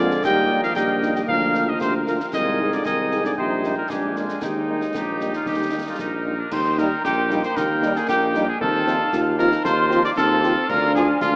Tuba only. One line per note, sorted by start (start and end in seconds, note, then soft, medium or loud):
0.00 0.16 F2 medium
0.24 0.68 D#2 medium
0.77 1.21 A#1 medium
1.29 1.73 D2 medium
1.81 2.20 D2 medium
2.33 2.77 C2 medium
2.86 3.29 C2 medium
3.38 3.82 A#1 medium
3.90 4.34 A#1 medium
4.42 4.86 D#2 medium
4.95 5.39 A#1 medium
5.47 5.91 D#2 medium
5.99 6.43 A#1 medium
6.52 6.95 D#2 medium
7.04 7.47 A#1 medium
7.56 7.99 D#2 medium
8.08 8.52 A#1 medium
8.60 9.04 D#2 medium
9.13 9.56 D#2 medium
9.65 10.08 D#2 medium
10.17 10.56 D#2 medium
10.69 11.13 D2 medium
11.21 11.36 D2 medium